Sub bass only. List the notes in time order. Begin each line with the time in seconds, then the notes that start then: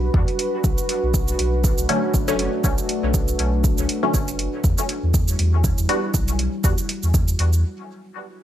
Already playing: B1
0.14 E2
0.64 B1
1.03 B1
1.39 B1
1.78 B1
2.14 F#1
2.64 B1
3.03 B1
3.39 B1
3.78 B1
4.14 F#1
4.64 E2
5.03 E2
5.39 E2
5.78 E2
6.14 B1
6.64 E2
7.03 E2
7.39 E2